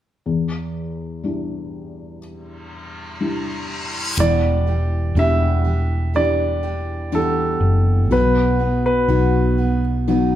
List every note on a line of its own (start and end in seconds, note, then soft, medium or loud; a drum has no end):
0.26 4.15 E2 soft
1.23 2.19 G3 soft
1.23 2.19 D4 soft
1.23 2.19 E4 soft
2.22 reverse cymbal medium
3.20 4.16 G3 soft
3.20 4.16 D4 soft
3.20 4.16 E4 soft
4.17 5.12 E1 medium
4.17 4.67 E2 medium
4.17 4.67 B2 medium
4.17 4.68 E3 medium
4.17 8.08 E3 medium
4.17 4.67 G3 medium
4.17 4.66 D4 medium
4.17 4.66 G4 medium
4.17 5.14 D5 medium
4.67 5.16 E3 soft
4.67 5.16 G3 soft
4.67 5.16 D4 soft
4.67 5.17 G4 soft
5.15 7.58 E1 medium
5.15 5.66 E2 medium
5.15 5.66 B2 medium
5.15 5.65 E3 medium
5.15 5.64 G3 medium
5.15 6.12 D4 soft
5.15 5.64 D4 medium
5.15 6.12 E4 soft
5.15 6.12 G4 soft
5.15 5.63 G4 medium
5.15 6.19 E5 medium
5.64 6.12 E3 soft
5.64 6.13 G3 soft
5.64 6.14 D4 soft
5.64 6.14 G4 soft
6.14 6.63 E3 soft
6.14 6.63 G3 soft
6.14 6.62 D4 soft
6.14 7.11 D4 soft
6.14 7.11 E4 soft
6.14 6.62 G4 soft
6.14 7.11 G4 soft
6.14 7.17 D5 medium
6.63 7.11 E3 soft
6.63 7.11 G3 soft
6.63 7.12 D4 soft
6.63 7.12 G4 soft
7.12 8.11 E2 medium
7.12 8.10 B2 medium
7.12 8.11 E3 medium
7.12 8.11 G3 medium
7.12 8.08 D4 soft
7.12 8.11 D4 medium
7.12 8.09 E4 soft
7.12 8.09 G4 soft
7.12 8.12 G4 medium
7.12 8.15 A4 medium
7.60 8.10 F#1 medium
8.10 9.05 B1 medium
8.10 10.35 B2 medium
8.10 8.61 B2 medium
8.10 8.61 F#3 medium
8.10 8.60 B3 medium
8.10 8.59 D#4 medium
8.10 8.58 F#4 medium
8.10 8.82 B4 medium
8.59 9.08 B3 soft
8.59 9.08 D#4 soft
8.59 9.09 F#4 soft
8.86 9.80 B4 medium
9.08 10.35 B1 medium
9.08 9.59 B2 medium
9.08 9.59 F#3 medium
9.08 10.05 B3 soft
9.08 9.58 B3 medium
9.08 10.05 D#4 soft
9.08 9.58 D#4 medium
9.08 10.05 F#4 soft
9.08 9.57 F#4 medium
9.58 10.07 B3 soft
9.58 10.07 D#4 soft
9.58 10.08 F#4 soft
10.08 10.35 F#3 medium
10.08 10.35 B3 soft
10.08 10.35 B3 medium
10.08 10.35 D#4 soft
10.08 10.35 D#4 medium
10.08 10.35 F#4 soft
10.08 10.35 F#4 medium